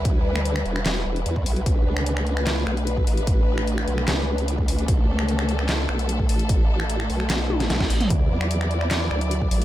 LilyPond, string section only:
\new Staff \with { instrumentName = "String section" } { \time 4/4 \key b \minor \tempo 4 = 149 << { b'1 | b'1~ | b'1 | a'1~ |
a'1 | d''1 | } \\ { <g e'>1 | <a d'>1~ | <a d'>1~ | <a d'>1~ |
<a d'>1 | <fis e'>1 | } >> }